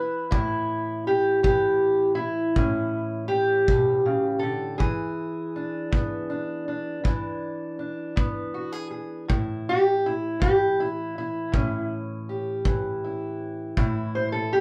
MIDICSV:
0, 0, Header, 1, 3, 480
1, 0, Start_track
1, 0, Tempo, 747198
1, 215, Time_signature, 12, 3, 24, 8
1, 9382, End_track
2, 0, Start_track
2, 0, Title_t, "Steel-string acoustic guitar"
2, 0, Program_c, 0, 25
2, 0, Note_on_c, 0, 52, 72
2, 0, Note_on_c, 0, 64, 46
2, 0, Note_on_c, 0, 71, 98
2, 195, Note_off_c, 0, 71, 0
2, 198, Note_off_c, 0, 64, 0
2, 198, Note_on_c, 0, 64, 89
2, 214, Note_on_c, 0, 45, 75
2, 685, Note_off_c, 0, 64, 0
2, 687, Note_on_c, 0, 67, 91
2, 912, Note_off_c, 0, 67, 0
2, 920, Note_on_c, 0, 67, 80
2, 933, Note_off_c, 0, 52, 0
2, 936, Note_on_c, 0, 52, 61
2, 1379, Note_off_c, 0, 67, 0
2, 1381, Note_on_c, 0, 64, 87
2, 1643, Note_off_c, 0, 45, 0
2, 1650, Note_on_c, 0, 45, 74
2, 1651, Note_on_c, 0, 61, 47
2, 2104, Note_off_c, 0, 64, 0
2, 2107, Note_on_c, 0, 67, 90
2, 2369, Note_on_c, 0, 47, 64
2, 2603, Note_off_c, 0, 47, 0
2, 2605, Note_on_c, 0, 49, 64
2, 2822, Note_on_c, 0, 69, 84
2, 2843, Note_off_c, 0, 49, 0
2, 2846, Note_on_c, 0, 50, 63
2, 3063, Note_off_c, 0, 61, 0
2, 3064, Note_off_c, 0, 45, 0
2, 3068, Note_off_c, 0, 69, 0
2, 3070, Note_on_c, 0, 68, 82
2, 3076, Note_off_c, 0, 52, 0
2, 3079, Note_on_c, 0, 52, 79
2, 3081, Note_off_c, 0, 67, 0
2, 3090, Note_off_c, 0, 50, 0
2, 3571, Note_on_c, 0, 62, 48
2, 3800, Note_on_c, 0, 59, 60
2, 4037, Note_off_c, 0, 62, 0
2, 4045, Note_on_c, 0, 62, 45
2, 4283, Note_off_c, 0, 62, 0
2, 4291, Note_on_c, 0, 62, 46
2, 4514, Note_off_c, 0, 52, 0
2, 4515, Note_off_c, 0, 62, 0
2, 4520, Note_on_c, 0, 52, 67
2, 4525, Note_on_c, 0, 62, 47
2, 4996, Note_off_c, 0, 62, 0
2, 5004, Note_on_c, 0, 62, 44
2, 5234, Note_off_c, 0, 59, 0
2, 5241, Note_on_c, 0, 59, 62
2, 5485, Note_off_c, 0, 68, 0
2, 5487, Note_on_c, 0, 66, 47
2, 5604, Note_off_c, 0, 66, 0
2, 5604, Note_on_c, 0, 68, 39
2, 5713, Note_off_c, 0, 68, 0
2, 5721, Note_on_c, 0, 68, 43
2, 5939, Note_off_c, 0, 59, 0
2, 5939, Note_off_c, 0, 68, 0
2, 5940, Note_off_c, 0, 62, 0
2, 5964, Note_on_c, 0, 45, 72
2, 5967, Note_on_c, 0, 64, 52
2, 6225, Note_on_c, 0, 67, 98
2, 6460, Note_off_c, 0, 67, 0
2, 6461, Note_off_c, 0, 64, 0
2, 6464, Note_on_c, 0, 64, 86
2, 6672, Note_off_c, 0, 52, 0
2, 6680, Note_on_c, 0, 52, 63
2, 6693, Note_on_c, 0, 67, 92
2, 6699, Note_off_c, 0, 64, 0
2, 6933, Note_off_c, 0, 67, 0
2, 6938, Note_on_c, 0, 64, 80
2, 7176, Note_off_c, 0, 64, 0
2, 7183, Note_on_c, 0, 64, 80
2, 7399, Note_off_c, 0, 45, 0
2, 7401, Note_on_c, 0, 45, 70
2, 7409, Note_on_c, 0, 61, 45
2, 7658, Note_off_c, 0, 64, 0
2, 7896, Note_on_c, 0, 67, 43
2, 8134, Note_off_c, 0, 52, 0
2, 8137, Note_on_c, 0, 52, 65
2, 8380, Note_on_c, 0, 64, 46
2, 8845, Note_off_c, 0, 45, 0
2, 8848, Note_on_c, 0, 45, 76
2, 8853, Note_off_c, 0, 64, 0
2, 8856, Note_on_c, 0, 64, 50
2, 8867, Note_off_c, 0, 67, 0
2, 9091, Note_on_c, 0, 72, 87
2, 9110, Note_off_c, 0, 61, 0
2, 9199, Note_off_c, 0, 72, 0
2, 9201, Note_on_c, 0, 69, 84
2, 9327, Note_off_c, 0, 69, 0
2, 9330, Note_off_c, 0, 64, 0
2, 9332, Note_on_c, 0, 67, 89
2, 9382, Note_off_c, 0, 45, 0
2, 9382, Note_off_c, 0, 52, 0
2, 9382, Note_off_c, 0, 67, 0
2, 9382, End_track
3, 0, Start_track
3, 0, Title_t, "Drums"
3, 206, Note_on_c, 9, 36, 62
3, 270, Note_off_c, 9, 36, 0
3, 926, Note_on_c, 9, 36, 67
3, 990, Note_off_c, 9, 36, 0
3, 1645, Note_on_c, 9, 36, 69
3, 1710, Note_off_c, 9, 36, 0
3, 2365, Note_on_c, 9, 36, 71
3, 2429, Note_off_c, 9, 36, 0
3, 3085, Note_on_c, 9, 36, 60
3, 3149, Note_off_c, 9, 36, 0
3, 3807, Note_on_c, 9, 36, 65
3, 3871, Note_off_c, 9, 36, 0
3, 4528, Note_on_c, 9, 36, 67
3, 4592, Note_off_c, 9, 36, 0
3, 5250, Note_on_c, 9, 36, 70
3, 5314, Note_off_c, 9, 36, 0
3, 5972, Note_on_c, 9, 36, 65
3, 6036, Note_off_c, 9, 36, 0
3, 6692, Note_on_c, 9, 36, 69
3, 6756, Note_off_c, 9, 36, 0
3, 7411, Note_on_c, 9, 36, 64
3, 7475, Note_off_c, 9, 36, 0
3, 8128, Note_on_c, 9, 36, 70
3, 8193, Note_off_c, 9, 36, 0
3, 8847, Note_on_c, 9, 36, 64
3, 8911, Note_off_c, 9, 36, 0
3, 9382, End_track
0, 0, End_of_file